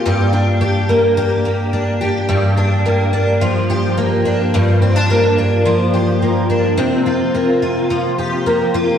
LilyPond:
\new Staff \with { instrumentName = "Twelve-string acoustic guitar" } { \time 4/4 \key g \minor \tempo 4 = 107 <g, g'>8 d'8 g'8 bes8 g'8 bes8 d'8 g'8 | g,8 d'8 bes8 d'8 f8 g'8 bes8 d'8 | g,8 c'16 d'16 bes8 d'8 f8 g'8 bes8 d'8 | c8 f'8 bes8 f'8 f8 g'8 bes8 f'8 | }